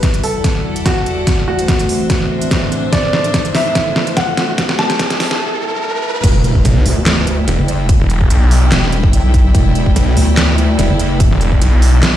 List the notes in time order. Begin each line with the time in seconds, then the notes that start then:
Already playing: E2 E3 G3 E4 F#4 A4 B4 D5, riser
0.03 kick, snare, closed hi-hat
0.14 closed hi-hat
0.24 A4, open hi-hat
0.36 D5 F#5
0.44 kick, snare, closed hi-hat
0.76 closed hi-hat
0.86 F#4, kick, snare, closed hi-hat
1.06 closed hi-hat
1.27 A2 E3 A3 C4 A4 E5, kick, snare, closed hi-hat
1.48 F#4
1.53 D4
1.58 C5, closed hi-hat
1.68 kick, snare, closed hi-hat
1.79 closed hi-hat
1.89 open hi-hat
2.02 E5
2.10 kick, snare, closed hi-hat
2.42 closed hi-hat
2.51 kick, snare, closed hi-hat
2.72 closed hi-hat
2.93 D2 D3 A3 E4 D5, kick, snare, closed hi-hat
3.13 snare
3.24 closed hi-hat
3.34 kick, snare, closed hi-hat
3.45 closed hi-hat
3.55 E5, snare, open hi-hat
3.75 kick, snare, closed hi-hat
3.96 snare
4.07 closed hi-hat
4.17 F#5, kick, snare, closed hi-hat
4.37 snare, closed hi-hat
4.58 kick, snare, closed hi-hat
4.69 snare
4.79 A5, snare
4.90 snare, closed hi-hat
4.99 kick, snare, closed hi-hat
5.10 snare, closed hi-hat
5.20 snare, open hi-hat
5.31 snare
6.24 E1 G3 B3 E4, kick, closed hi-hat, crash, impact
6.44 closed hi-hat
6.53 D5, kick
6.65 B1, closed hi-hat
6.76 A4
6.86 D2, open hi-hat
7.06 snare, clap, closed hi-hat
7.27 closed hi-hat
7.33 G5
7.48 E1, closed hi-hat
7.59 F#1
7.68 closed hi-hat
7.89 kick, closed hi-hat
8.00 E1
8.10 closed hi-hat
8.21 kick
8.30 B1, closed hi-hat
8.51 open hi-hat
8.72 E1, snare, clap, closed hi-hat
8.92 closed hi-hat
9.04 kick
9.13 B1, closed hi-hat
9.34 kick, closed hi-hat
9.55 E1, kick, closed hi-hat
9.75 closed hi-hat
9.86 kick
9.96 B1, closed hi-hat
10.17 D2, open hi-hat
10.37 snare, clap, closed hi-hat
10.58 closed hi-hat
10.79 E1, closed hi-hat
10.90 F#1
10.99 closed hi-hat
11.20 kick, closed hi-hat
11.31 E1
11.41 closed hi-hat
11.52 kick
11.61 B1, closed hi-hat
11.82 open hi-hat
12.03 snare, clap, closed hi-hat